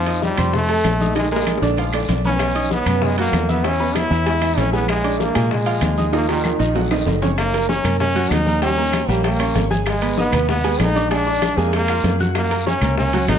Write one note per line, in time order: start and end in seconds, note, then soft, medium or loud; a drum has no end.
0.00 0.32 F2 medium
0.00 0.21 F3 loud
0.06 0.32 D#4 medium
0.06 0.32 D#5 medium
0.06 0.33 D#6 medium
0.06 high bongo soft
0.06 high conga soft
0.06 high timbale medium
0.22 0.53 G3 loud
0.22 high bongo medium
0.22 high conga medium
0.22 low timbale medium
0.22 short guiro medium
0.38 0.81 F2 loud
0.38 0.63 C4 medium
0.38 0.63 C5 medium
0.38 0.64 C6 medium
0.38 high conga soft
0.38 low conga medium
0.38 high timbale loud
0.38 short guiro medium
0.38 claves medium
0.53 1.13 A3 loud
0.53 high bongo medium
0.53 high conga soft
0.53 low conga medium
0.53 long guiro medium
0.69 0.94 A3 medium
0.69 0.95 A4 medium
0.69 0.95 A5 medium
0.69 high bongo soft
0.69 high conga soft
0.69 high timbale medium
0.84 1.56 A#1 medium
0.84 high bongo soft
0.84 low bongo medium
0.84 high conga medium
0.84 high timbale medium
0.84 low timbale medium
0.84 short guiro medium
0.84 claves medium
1.00 1.13 D#4 medium
1.00 1.13 D#5 medium
1.00 1.13 D#6 medium
1.00 high bongo soft
1.00 high conga medium
1.00 short guiro medium
1.15 1.28 D#3 medium
1.15 1.31 G#3 medium
1.15 1.29 D#4 medium
1.15 1.29 D#5 medium
1.15 high bongo loud
1.15 high timbale medium
1.15 long guiro medium
1.31 1.61 G#3 medium
1.31 1.57 A#3 medium
1.31 1.57 A#4 medium
1.31 1.57 A#5 medium
1.31 high conga soft
1.36 high bongo loud
1.47 high conga medium
1.47 high timbale medium
1.47 low timbale medium
1.47 short guiro medium
1.47 claves medium
1.57 high bongo loud
1.61 2.05 A#1 medium
1.61 1.75 D3 medium
1.61 1.75 D4 medium
1.61 1.75 D5 medium
1.61 high conga soft
1.61 short guiro medium
1.67 low bongo medium
1.77 1.91 F3 medium
1.77 1.91 F4 medium
1.77 1.91 F5 medium
1.77 low bongo medium
1.77 high conga soft
1.77 high timbale medium
1.77 long guiro medium
1.93 2.19 D3 medium
1.93 2.19 D4 medium
1.93 2.19 D5 medium
1.93 high conga soft
1.93 high timbale medium
1.93 claves medium
1.98 low bongo medium
2.08 2.81 B1 medium
2.08 low bongo medium
2.08 high conga medium
2.08 high timbale medium
2.08 low timbale medium
2.08 short guiro medium
2.24 2.50 B3 medium
2.24 2.69 C#4 loud
2.24 2.50 B4 medium
2.24 2.51 B5 medium
2.24 high conga medium
2.24 short guiro medium
2.29 low bongo medium
2.39 high bongo medium
2.39 high conga soft
2.39 high timbale medium
2.39 long guiro medium
2.39 claves medium
2.55 2.81 D#4 medium
2.55 2.81 D#5 medium
2.55 2.81 D#6 medium
2.55 high bongo soft
2.55 high conga soft
2.55 high timbale medium
2.70 3.05 B3 loud
2.70 high bongo medium
2.70 high conga loud
2.70 low timbale medium
2.70 short guiro medium
2.86 3.29 F#2 medium
2.86 3.12 B3 medium
2.86 3.12 B4 medium
2.86 3.12 B5 medium
2.86 high conga soft
2.86 low conga medium
2.86 high timbale medium
2.86 short guiro medium
2.86 claves medium
3.02 3.18 G#3 loud
3.02 high bongo medium
3.02 high conga soft
3.02 low conga medium
3.02 long guiro medium
3.18 3.43 F#3 medium
3.18 3.51 A#3 loud
3.18 3.44 F#4 medium
3.18 3.44 F#5 medium
3.18 high bongo soft
3.18 high conga soft
3.18 high timbale medium
3.33 4.05 E2 medium
3.33 high bongo soft
3.33 low bongo medium
3.33 high conga medium
3.33 high timbale medium
3.33 low timbale medium
3.33 short guiro medium
3.33 claves medium
3.49 3.68 B3 loud
3.49 3.61 E4 medium
3.49 3.62 E5 medium
3.49 3.62 E6 medium
3.49 high bongo soft
3.49 high conga medium
3.49 short guiro medium
3.64 3.77 E3 medium
3.64 3.99 C#4 loud
3.64 3.77 E4 medium
3.64 3.77 E5 medium
3.64 high bongo medium
3.64 high timbale medium
3.64 long guiro medium
3.80 4.05 B3 medium
3.80 4.06 B4 medium
3.80 4.06 B5 medium
3.80 high bongo soft
3.80 high conga soft
3.95 4.60 E4 loud
3.95 high bongo medium
3.95 high conga loud
3.95 high timbale medium
3.95 low timbale medium
3.95 short guiro medium
3.95 claves medium
4.10 4.54 E2 medium
4.10 4.24 E3 medium
4.10 4.24 E4 medium
4.10 4.24 E5 medium
4.10 high conga soft
4.10 short guiro medium
4.26 4.39 G#3 medium
4.26 4.39 G#4 medium
4.26 4.39 G#5 medium
4.26 high bongo medium
4.26 high conga soft
4.26 high timbale medium
4.26 long guiro medium
4.41 4.67 E3 medium
4.41 4.67 E4 medium
4.41 4.68 E5 medium
4.41 high bongo soft
4.41 high conga soft
4.41 high timbale medium
4.41 claves medium
4.57 5.30 A#1 medium
4.57 4.73 C#4 loud
4.57 high bongo soft
4.57 low bongo medium
4.57 high conga medium
4.57 high timbale medium
4.57 low timbale medium
4.57 short guiro medium
4.73 4.98 G#3 medium
4.73 4.88 B3 loud
4.73 4.99 G#4 medium
4.73 4.99 G#5 medium
4.73 high bongo soft
4.73 high conga medium
4.73 short guiro medium
4.88 5.22 G#3 loud
4.88 high bongo medium
4.88 high conga soft
4.88 high timbale medium
4.88 long guiro medium
4.88 claves medium
5.04 5.30 D4 medium
5.04 5.30 D5 medium
5.04 5.30 D6 medium
5.04 high bongo soft
5.04 high conga soft
5.04 high timbale medium
5.20 5.51 A#3 loud
5.20 high bongo medium
5.20 high conga medium
5.20 low timbale medium
5.20 short guiro medium
5.35 5.79 A#2 medium
5.35 5.61 G#3 medium
5.35 5.61 G#4 medium
5.35 5.61 G#5 medium
5.35 high conga soft
5.35 low conga medium
5.35 high timbale loud
5.35 short guiro medium
5.35 claves medium
5.51 6.10 G#3 medium
5.51 high bongo medium
5.51 high conga soft
5.51 low conga medium
5.51 long guiro medium
5.66 5.92 F3 medium
5.66 5.92 F4 medium
5.66 5.92 F5 medium
5.66 high bongo soft
5.66 high conga soft
5.66 high timbale medium
5.81 6.54 D#2 medium
5.81 high bongo soft
5.81 low bongo medium
5.81 high conga medium
5.81 high timbale medium
5.81 low timbale medium
5.81 short guiro medium
5.81 claves medium
5.97 6.10 D#4 medium
5.97 6.10 D#5 medium
5.97 6.11 D#6 medium
5.97 high bongo soft
5.97 high conga medium
5.97 short guiro medium
6.12 6.26 D#3 medium
6.12 6.28 A#3 loud
6.12 6.26 D#4 medium
6.12 6.26 D#5 medium
6.12 high bongo medium
6.12 high timbale medium
6.12 long guiro medium
6.28 6.58 D#3 medium
6.28 6.54 A#3 medium
6.28 6.54 A#4 medium
6.28 6.54 A#5 medium
6.28 high bongo medium
6.28 high conga soft
6.28 high timbale loud
6.44 high conga medium
6.44 high timbale medium
6.44 short guiro medium
6.44 claves medium
6.59 7.03 A#1 medium
6.59 6.72 D#3 medium
6.59 6.72 D#4 medium
6.59 6.73 D#5 medium
6.59 high conga soft
6.59 short guiro medium
6.75 6.88 F#3 medium
6.75 6.88 F#4 medium
6.75 6.88 F#5 medium
6.75 low bongo medium
6.75 high conga soft
6.75 low timbale medium
6.75 long guiro medium
6.91 7.17 D#3 medium
6.91 7.17 D#4 medium
6.91 7.17 D#5 medium
6.91 low bongo medium
6.91 high conga soft
6.91 low timbale medium
6.91 claves medium
7.06 7.79 F#1 medium
7.06 low bongo medium
7.06 high conga medium
7.06 low timbale medium
7.06 short guiro medium
7.22 7.35 C#4 medium
7.22 7.35 C#5 medium
7.22 7.35 C#6 medium
7.22 low bongo medium
7.22 high conga medium
7.22 low timbale medium
7.22 short guiro medium
7.38 7.67 A#3 loud
7.38 high bongo medium
7.38 high conga soft
7.38 high timbale medium
7.38 long guiro medium
7.38 claves medium
7.53 7.66 A#3 medium
7.53 7.66 A#4 medium
7.53 7.66 A#5 medium
7.53 high bongo soft
7.53 high conga soft
7.53 high timbale medium
7.69 7.82 C#4 medium
7.69 7.98 C#4 loud
7.69 7.82 C#5 medium
7.69 7.82 C#6 medium
7.69 high bongo medium
7.69 high conga medium
7.69 low timbale medium
7.69 short guiro medium
7.84 8.28 F#2 medium
7.84 8.10 A#3 medium
7.84 8.10 A#4 medium
7.84 8.10 A#5 medium
7.84 high conga soft
7.84 low conga medium
7.84 high timbale medium
7.84 short guiro medium
7.84 claves medium
8.00 8.33 C#4 loud
8.00 high bongo medium
8.00 high conga soft
8.00 low conga medium
8.00 long guiro medium
8.15 8.41 F#3 medium
8.15 8.41 F#4 medium
8.15 8.41 F#5 medium
8.15 high bongo soft
8.15 high conga soft
8.15 high timbale medium
8.31 9.03 D#2 medium
8.31 8.63 D#4 loud
8.31 high bongo soft
8.31 low bongo medium
8.31 high conga medium
8.31 high timbale medium
8.31 low timbale medium
8.31 short guiro medium
8.31 claves medium
8.46 8.59 A#3 medium
8.46 8.59 A#4 medium
8.46 8.60 A#5 medium
8.46 high bongo soft
8.46 high conga medium
8.46 short guiro medium
8.62 8.75 G3 medium
8.62 9.12 C#4 loud
8.62 8.75 G4 medium
8.62 8.75 G5 medium
8.62 high bongo medium
8.62 high conga soft
8.62 high timbale medium
8.62 long guiro medium
8.77 9.03 A#3 medium
8.77 9.03 A#4 medium
8.77 9.03 A#5 medium
8.77 high bongo soft
8.77 high conga soft
8.93 high bongo medium
8.93 high conga medium
8.93 high timbale medium
8.93 low timbale medium
8.93 short guiro medium
8.93 claves medium
9.08 9.52 A#1 medium
9.08 9.34 G3 medium
9.08 9.25 A#3 medium
9.08 9.35 G4 medium
9.08 9.35 G5 medium
9.08 high conga soft
9.08 short guiro medium
9.24 9.68 A#3 loud
9.24 high bongo medium
9.24 high conga soft
9.24 high timbale medium
9.24 long guiro medium
9.39 9.65 C#4 medium
9.39 9.65 C#5 medium
9.39 9.65 C#6 medium
9.39 high bongo soft
9.39 high conga soft
9.39 high timbale loud
9.39 claves medium
9.55 10.27 G#1 medium
9.55 high bongo soft
9.55 low bongo medium
9.55 high conga medium
9.55 high timbale medium
9.55 low timbale medium
9.55 short guiro medium
9.70 9.96 G#4 medium
9.70 9.96 G#5 medium
9.70 9.97 G#6 medium
9.70 high bongo soft
9.70 high conga medium
9.70 short guiro medium
9.86 10.16 G#3 loud
9.86 high bongo medium
9.86 high conga soft
9.86 high timbale medium
9.86 long guiro medium
9.86 claves medium
10.02 10.15 B3 medium
10.02 10.15 B4 medium
10.02 10.15 B5 medium
10.02 high bongo soft
10.02 high conga soft
10.02 high timbale medium
10.17 10.48 B3 loud
10.17 10.30 D#4 medium
10.17 10.30 D#5 medium
10.17 10.31 D#6 medium
10.17 high bongo medium
10.17 high conga medium
10.17 low timbale medium
10.17 short guiro medium
10.32 10.76 D#2 medium
10.32 10.59 B3 medium
10.32 10.59 B4 medium
10.32 10.59 B5 medium
10.32 high conga soft
10.32 low conga medium
10.32 high timbale loud
10.32 short guiro medium
10.32 claves medium
10.49 10.83 B3 loud
10.49 high bongo medium
10.49 high conga soft
10.49 low conga medium
10.49 long guiro medium
10.64 10.90 G#3 medium
10.64 10.90 G#4 medium
10.64 10.90 G#5 medium
10.64 high bongo soft
10.64 high conga soft
10.64 high timbale medium
10.79 11.52 A#1 medium
10.79 11.14 D#4 loud
10.79 high bongo soft
10.79 low bongo medium
10.79 high conga medium
10.79 high timbale medium
10.79 low timbale medium
10.79 short guiro medium
10.79 claves medium
10.95 11.08 D4 medium
10.95 11.08 D5 medium
10.95 11.09 D6 medium
10.95 high bongo soft
10.95 high conga medium
10.95 short guiro medium
11.10 11.23 G#3 medium
11.10 11.61 D4 loud
11.10 11.24 G#4 medium
11.10 11.24 G#5 medium
11.10 high bongo medium
11.10 high conga soft
11.10 high timbale medium
11.10 long guiro medium
11.27 11.52 D4 medium
11.27 11.52 D5 medium
11.27 11.52 D6 medium
11.27 high bongo soft
11.27 high conga soft
11.42 high bongo medium
11.42 high conga loud
11.42 high timbale medium
11.42 low timbale medium
11.42 short guiro medium
11.42 claves medium
11.57 12.01 F2 loud
11.57 11.83 G#3 medium
11.57 11.74 A#3 medium
11.57 11.83 G#4 medium
11.57 11.83 G#5 medium
11.57 short guiro medium
11.73 12.18 A#3 loud
11.73 high bongo medium
11.73 high conga soft
11.73 high timbale medium
11.73 long guiro medium
11.88 12.14 F4 medium
11.88 12.15 F5 medium
11.88 12.15 F6 medium
11.88 high bongo soft
11.88 high conga soft
11.88 high timbale loud
11.88 claves medium
12.04 12.76 F#2 medium
12.04 high bongo soft
12.04 low bongo medium
12.04 high conga medium
12.04 high timbale medium
12.04 low timbale medium
12.04 short guiro medium
12.20 12.46 F#4 medium
12.20 12.46 F#5 medium
12.20 12.46 F#6 medium
12.20 high bongo soft
12.20 high conga medium
12.20 short guiro medium
12.35 12.65 A#3 loud
12.35 high bongo medium
12.35 high conga soft
12.35 high timbale medium
12.35 long guiro medium
12.35 claves medium
12.50 12.63 A#3 medium
12.50 12.64 A#4 medium
12.50 12.64 A#5 medium
12.50 high bongo soft
12.50 high conga soft
12.50 high timbale medium
12.66 12.79 C#4 medium
12.66 12.96 C#4 loud
12.66 12.79 C#5 medium
12.66 12.79 C#6 medium
12.66 high bongo medium
12.66 high conga loud
12.66 low timbale medium
12.66 short guiro medium
12.81 13.25 C#2 loud
12.81 13.08 A#3 medium
12.81 13.08 A#4 medium
12.81 13.08 A#5 medium
12.81 high conga soft
12.81 low conga medium
12.81 high timbale medium
12.81 short guiro medium
12.81 claves medium
12.98 13.27 C#4 loud
12.98 high bongo medium
12.98 high conga soft
12.98 low conga medium
12.98 long guiro medium
13.13 13.39 F#3 medium
13.13 13.39 F#4 medium
13.13 13.39 F#5 medium
13.13 high bongo soft
13.13 high conga soft
13.13 high timbale medium
13.27 13.39 G#1 medium
13.27 13.39 D#4 loud
13.27 high bongo soft
13.27 low bongo medium
13.27 high conga medium
13.27 high timbale medium
13.27 low timbale medium
13.27 short guiro medium
13.27 claves medium